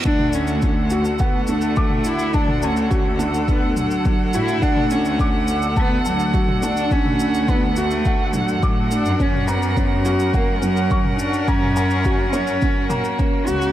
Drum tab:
SH |x-xxx-xxx-xxx-xx|x-xxx-xxx-xxx-xx|x-xxx-xxx-xxx-xx|x-xxx-xxx-xxx-xx|
T2 |-o-----------o--|-o--------o-----|-o-----------o--|-o--------o-----|
BD |o---o---o---o---|o---o---o---o---|o---o---o---o---|o---o---o---o---|

SH |x-xxx-xxx-xxx-xx|x-xxx-xxx-xxx-xx|
T2 |-o-----------o--|-o--------o-----|
BD |o---o---o---o---|o---o---o---o---|